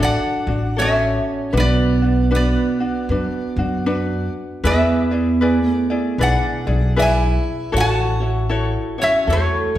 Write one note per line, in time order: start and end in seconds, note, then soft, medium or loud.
0.00 0.15 A1 medium
0.00 0.48 D4 medium
0.00 0.75 D4 medium
0.00 0.47 F#4 medium
0.00 0.47 A4 medium
0.00 0.75 D5 medium
0.04 0.82 F#5 medium
0.47 1.17 A1 medium
0.47 0.78 D4 soft
0.47 0.77 F#4 medium
0.76 1.52 C#4 medium
0.76 1.53 F#4 medium
0.76 1.52 A4 medium
0.76 1.56 C#5 medium
0.76 1.52 C#5 medium
0.82 1.59 E5 medium
1.53 2.54 B1 loud
1.53 2.02 D4 medium
1.53 2.01 F#4 medium
1.53 2.02 B4 medium
1.57 2.29 B3 medium
1.57 2.30 B4 medium
1.57 2.35 D5 medium
2.02 2.30 D4 soft
2.02 2.30 F#4 soft
2.31 2.80 D4 medium
2.31 2.79 F#4 medium
2.31 2.79 B4 medium
2.35 4.32 B3 medium
2.35 4.32 B4 medium
2.35 4.32 D5 medium
2.80 3.10 D4 soft
2.80 3.10 F#4 soft
3.09 3.25 F#2 medium
3.09 3.58 D4 medium
3.09 3.57 F#4 medium
3.09 3.57 B4 medium
3.56 4.26 F#2 medium
3.56 3.85 D4 soft
3.56 3.86 F#4 medium
3.86 4.64 D4 medium
3.86 4.64 F#4 loud
3.86 4.64 B4 medium
4.64 5.64 E2 medium
4.64 5.65 B3 medium
4.64 5.12 E4 medium
4.64 5.11 G#4 medium
4.64 5.12 B4 medium
4.64 6.16 B4 medium
4.64 5.10 D5 medium
4.64 5.72 E5 medium
5.11 5.40 E4 soft
5.11 5.41 G#4 soft
5.11 5.40 D5 medium
5.41 5.89 E4 medium
5.41 5.89 G#4 medium
5.41 5.89 B4 medium
5.41 5.89 D5 medium
5.65 6.15 A3 medium
5.72 6.21 D5 medium
5.90 6.19 E4 soft
5.90 6.20 G#4 medium
5.90 6.19 D5 medium
6.18 6.34 B1 medium
6.18 6.67 E4 medium
6.18 6.66 G#4 medium
6.18 6.66 B4 medium
6.18 6.66 D5 medium
6.18 6.93 D5 medium
6.22 6.94 D4 medium
6.22 7.00 F#5 medium
6.67 7.36 B1 medium
6.67 6.96 E4 soft
6.67 6.96 G#4 soft
6.67 6.96 D5 medium
6.96 7.72 E4 medium
6.96 7.71 E4 medium
6.96 7.72 G#4 medium
6.96 7.73 B4 medium
6.96 7.72 D5 medium
6.96 7.71 E5 medium
7.02 7.78 G#5 medium
7.72 8.74 A1 medium
7.72 8.20 E4 medium
7.72 8.20 F#4 medium
7.72 8.20 A4 medium
7.72 8.19 C#5 medium
7.77 8.96 F#4 medium
7.77 8.96 F#5 medium
7.77 9.05 A5 loud
8.20 8.48 E4 soft
8.20 8.49 F#4 soft
8.20 8.50 C#5 medium
8.49 8.98 E4 medium
8.49 8.98 F#4 medium
8.49 8.97 A4 medium
8.49 8.97 C#5 medium
8.98 9.27 E4 soft
8.98 9.28 F#4 soft
8.98 9.28 C#5 medium
8.98 9.27 C#5 medium
9.02 9.28 C#4 medium
9.02 9.31 E5 medium
9.27 9.43 E2 medium
9.27 9.78 A3 medium
9.27 9.76 E4 medium
9.27 9.76 F#4 medium
9.27 9.75 A4 medium
9.27 9.78 A4 medium
9.27 9.74 C#5 medium
9.33 9.78 C#5 medium